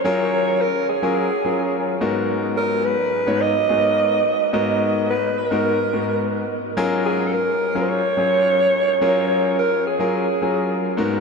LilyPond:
<<
  \new Staff \with { instrumentName = "Alto saxophone" } { \time 4/4 \key fis \major \tempo 4 = 107 cis''4 ais'8 gis'2 r8 | r8 ais'8 b'4 dis''2 | dis''4 b'8 ais'2 r8 | r8 gis'16. a'32 ais'8.~ ais'32 bis'32 cis''2 |
cis''4 ais'8 gis'2 r8 | }
  \new Staff \with { instrumentName = "Grand piano" } { \time 4/4 \key fis \major <fis cis' eis' gis' ais'>4 r8. <fis cis' eis' gis' ais'>8 r16 <fis cis' eis' gis' ais'>8. r16 <gis, b dis' fis' ais'>8~ | <gis, b dis' fis' ais'>4 r8. <gis, b dis' fis' cis''>8 r16 <gis, b dis' fis' gis' ais'>8. r8. | <gis, b dis' fis' ais'>4 r8. <gis, b dis' fis' ais'>8 r16 <gis, b dis' fis' ais'>8. r8. | <fis cis' eis' gis' ais'>4 r8. <fis cis' eis' gis' ais'>8 r16 <fis cis' eis' gis' cis''>8. r8. |
<fis cis' eis' gis' ais'>4 r8. <fis cis' eis' gis' ais'>8 r16 <fis cis' eis' gis' ais'>8. r16 <gis, b dis' fis' ais'>8 | }
>>